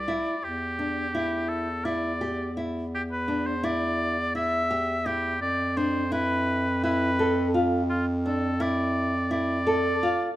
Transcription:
Already playing: C2 D5
0.08 E4
0.43 E2 G4
0.79 D4
1.15 E4
1.49 A4
1.85 E4 D5
2.21 G4
2.57 E4
2.95 G4
3.12 B4
3.28 D4
3.47 C5
3.63 E4 D5
4.35 E4 E5
4.71 G4
5.06 E4 G4
5.41 F2 D5
5.77 D4 C5
6.12 E4 B4
6.84 E4 B4
7.19 A4
7.54 F4
7.90 F4
8.26 D4 A4
8.60 E4 D5
9.31 E4 D5
9.67 A4
10.03 F4

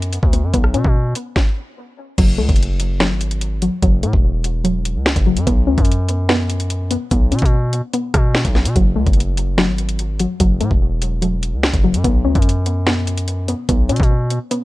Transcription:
Already playing: F#2 B3 C#4
0.02 closed hi-hat
0.13 closed hi-hat
0.23 D2, kick
0.33 B3, closed hi-hat
0.43 F#2
0.54 B1 B3, kick, closed hi-hat
0.64 cross-stick
0.74 B2 C#4, closed hi-hat
0.84 B2, kick
1.15 closed hi-hat
1.36 kick, snare
2.18 F#1 F#3, kick, closed hi-hat, crash
2.38 C#2 A3
2.49 F#1, kick, closed hi-hat
2.56 closed hi-hat
2.63 closed hi-hat
2.80 closed hi-hat
3.00 F#3, snare
3.11 G#1
3.21 closed hi-hat
3.31 closed hi-hat
3.41 closed hi-hat
3.62 F#3, closed hi-hat
3.83 F#1 F#3, kick, closed hi-hat
4.03 A2 A3, closed hi-hat
4.13 E1, kick
4.44 closed hi-hat
4.64 F#3, closed hi-hat
4.85 closed hi-hat
4.96 C#2
5.06 snare
5.16 F#1, kick, closed hi-hat
5.27 F#3
5.37 F#2, closed hi-hat
5.47 B1 B3, kick, closed hi-hat
5.67 D2 C#4
5.78 F#2, kick, closed hi-hat
5.85 closed hi-hat
5.92 closed hi-hat
6.09 closed hi-hat
6.29 B3, snare
6.50 closed hi-hat
6.60 closed hi-hat
6.70 closed hi-hat
6.91 B3, closed hi-hat
7.11 B1 B3, kick, closed hi-hat
7.32 B2 C#4, closed hi-hat
7.39 B2, kick, closed hi-hat
7.46 closed hi-hat
7.73 closed hi-hat
7.93 B3, closed hi-hat
8.14 B2, kick, cross-stick, closed hi-hat
8.35 snare
8.45 B1, kick, closed hi-hat
8.55 B3, snare
8.65 B2, closed hi-hat
8.76 F#1 F#3, kick, closed hi-hat
8.96 C#2 A3
9.07 F#1, kick, closed hi-hat
9.13 closed hi-hat
9.20 closed hi-hat
9.37 closed hi-hat
9.58 F#3, snare
9.68 G#1
9.78 closed hi-hat
9.89 closed hi-hat
9.99 closed hi-hat
10.20 F#3, closed hi-hat
10.40 F#1 F#3, kick, closed hi-hat
10.61 A2 A3, closed hi-hat
10.71 E1, kick
11.02 closed hi-hat
11.22 F#3, closed hi-hat
11.43 closed hi-hat
11.53 C#2
11.63 snare
11.74 F#1, kick, closed hi-hat
11.84 F#3
11.94 F#2, closed hi-hat
12.04 B1 B3, kick, closed hi-hat
12.25 D2 C#4
12.35 F#2, kick, closed hi-hat
12.42 closed hi-hat
12.49 closed hi-hat
12.66 closed hi-hat
12.87 B3, snare
13.07 closed hi-hat
13.18 closed hi-hat
13.28 closed hi-hat
13.48 B3, closed hi-hat
13.69 B1 B3, kick, closed hi-hat
13.89 B2 C#4, closed hi-hat
13.96 B2, kick, closed hi-hat
14.03 closed hi-hat
14.30 closed hi-hat
14.51 B3, closed hi-hat

